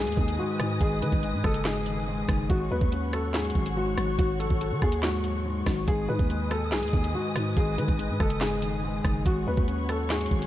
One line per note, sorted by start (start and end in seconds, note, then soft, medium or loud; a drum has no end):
0.00 0.38 G#2 loud
0.00 0.16 D#3 medium
0.00 0.60 G#3 medium
0.00 0.36 G#4 loud
0.00 2.46 B4 medium
0.00 2.46 D#5 medium
0.00 2.46 G#5 medium
0.00 2.46 D#6 loud
0.00 closed hi-hat medium
0.07 0.17 D#2 loud
0.07 closed hi-hat medium
0.12 closed hi-hat medium
0.17 0.38 D#2 loud
0.17 0.58 D#3 medium
0.17 kick medium
0.28 closed hi-hat medium
0.38 0.79 G#2 loud
0.38 0.78 F#4 medium
0.60 0.80 G#2 loud
0.60 1.00 D#3 medium
0.60 cross-stick loud
0.60 closed hi-hat medium
0.81 1.03 G#1 loud
0.81 1.64 G#2 medium
0.81 1.00 G#4 medium
0.81 kick loud
0.81 closed hi-hat medium
1.02 1.85 D#3 medium
1.02 1.12 D#3 loud
1.02 1.42 B4 medium
1.02 closed hi-hat medium
1.12 1.35 G#1 loud
1.12 kick loud
1.23 2.29 G#3 medium
1.23 closed hi-hat medium
1.33 1.44 G#2 loud
1.44 2.25 F#1 loud
1.44 1.63 A4 medium
1.44 kick medium
1.44 cross-stick loud
1.54 closed hi-hat medium
1.65 2.06 G#2 medium
1.65 2.46 G#4 medium
1.65 snare loud
1.65 clap medium
1.86 2.27 D#3 medium
1.86 closed hi-hat medium
2.08 2.50 G#2 loud
2.29 2.49 F#1 loud
2.29 2.50 D#3 medium
2.29 kick loud
2.29 cross-stick loud
2.29 closed hi-hat medium
2.50 2.70 G#1 loud
2.50 3.55 G#3 medium
2.50 5.84 F#4 medium
2.50 2.69 F#4 loud
2.50 5.84 C#5 medium
2.50 5.84 F#5 medium
2.50 5.84 C#6 loud
2.50 kick loud
2.50 closed hi-hat medium
2.71 2.81 D#2 loud
2.71 3.54 F#3 medium
2.71 3.11 B4 medium
2.81 3.52 D#2 loud
2.81 kick loud
2.92 3.98 C#4 medium
2.92 closed hi-hat medium
3.13 3.32 A4 medium
3.13 cross-stick loud
3.13 closed hi-hat loud
3.34 3.75 G#2 medium
3.34 3.74 G#4 medium
3.34 snare loud
3.34 clap medium
3.34 closed hi-hat soft
3.40 closed hi-hat medium
3.45 closed hi-hat medium
3.50 closed hi-hat medium
3.55 3.96 G#1 loud
3.55 3.96 F#3 medium
3.55 kick medium
3.66 closed hi-hat medium
3.77 4.82 G#2 medium
3.77 4.16 F#4 medium
3.98 4.18 G#1 loud
3.98 4.38 F#3 medium
3.98 cross-stick loud
3.98 closed hi-hat medium
4.19 4.49 G#1 loud
4.19 4.38 F#4 loud
4.19 kick loud
4.19 closed hi-hat medium
4.40 5.23 F#3 medium
4.40 4.79 A4 medium
4.40 closed hi-hat medium
4.50 4.73 G#1 loud
4.50 kick loud
4.61 5.67 A4 medium
4.61 closed hi-hat medium
4.71 4.82 D#3 loud
4.82 5.63 D#2 loud
4.82 5.01 G#4 medium
4.82 kick medium
4.82 cross-stick medium
4.92 closed hi-hat medium
5.03 5.44 G#2 medium
5.03 5.84 F#4 medium
5.03 snare loud
5.03 clap medium
5.24 5.65 F#3 medium
5.24 closed hi-hat medium
5.45 5.86 G#2 medium
5.66 5.87 G#1 loud
5.66 5.88 F#3 medium
5.66 kick loud
5.66 cross-stick loud
5.66 snare medium
5.66 open hi-hat medium
5.87 6.08 G#1 loud
5.87 6.71 G#2 loud
5.87 6.07 G#4 loud
5.87 9.22 B4 medium
5.87 9.22 D#5 medium
5.87 9.22 G#5 medium
5.87 9.22 D#6 loud
5.87 kick loud
5.87 closed hi-hat medium
6.09 6.19 G#2 loud
6.09 6.92 D#3 medium
6.09 6.48 B4 medium
6.19 6.74 D#2 loud
6.19 kick loud
6.30 7.36 G#3 loud
6.30 closed hi-hat medium
6.51 6.70 A4 medium
6.51 cross-stick loud
6.51 closed hi-hat medium
6.72 6.84 B1 loud
6.72 7.13 G#2 medium
6.72 7.12 G#4 loud
6.72 snare loud
6.72 clap medium
6.72 closed hi-hat soft
6.77 closed hi-hat medium
6.83 6.93 D#2 loud
6.83 closed hi-hat medium
6.88 closed hi-hat medium
6.93 7.14 D#2 loud
6.93 7.34 D#3 medium
6.93 kick medium
7.04 closed hi-hat medium
7.14 7.55 G#2 loud
7.14 7.54 F#4 medium
7.36 7.56 G#2 loud
7.36 7.76 D#3 medium
7.36 cross-stick loud
7.36 closed hi-hat medium
7.57 7.79 G#1 loud
7.57 8.40 G#2 medium
7.57 7.76 G#4 medium
7.57 kick loud
7.57 closed hi-hat medium
7.78 8.61 D#3 medium
7.78 7.88 D#3 loud
7.78 8.18 B4 medium
7.78 closed hi-hat medium
7.88 8.11 G#1 loud
7.88 kick loud
7.99 9.05 G#3 medium
7.99 closed hi-hat medium
8.10 8.20 G#2 loud
8.20 9.01 F#1 loud
8.20 8.39 A4 medium
8.20 kick loud
8.20 cross-stick medium
8.30 closed hi-hat medium
8.41 8.82 G#2 medium
8.41 9.22 G#4 medium
8.41 snare loud
8.41 clap medium
8.62 9.03 D#3 medium
8.62 closed hi-hat medium
8.84 9.26 G#2 loud
9.05 9.25 F#1 loud
9.05 9.26 D#3 medium
9.05 kick loud
9.05 cross-stick loud
9.05 closed hi-hat medium
9.25 9.46 G#1 loud
9.25 10.31 G#3 medium
9.25 10.47 F#4 medium
9.25 9.45 F#4 loud
9.25 10.47 C#5 medium
9.25 10.47 F#5 medium
9.25 10.47 C#6 loud
9.25 kick loud
9.25 closed hi-hat medium
9.47 9.57 D#2 loud
9.47 10.30 F#3 medium
9.47 9.87 B4 medium
9.57 10.28 D#2 loud
9.57 kick loud
9.68 10.47 C#4 medium
9.68 closed hi-hat medium
9.89 10.08 A4 medium
9.89 cross-stick medium
9.89 closed hi-hat medium
10.10 10.47 G#2 medium
10.10 10.47 G#4 medium
10.10 snare loud
10.10 clap medium
10.10 closed hi-hat soft
10.16 closed hi-hat medium
10.21 closed hi-hat medium
10.26 closed hi-hat medium
10.31 10.47 G#1 loud
10.31 10.47 F#3 medium
10.31 kick medium
10.42 closed hi-hat medium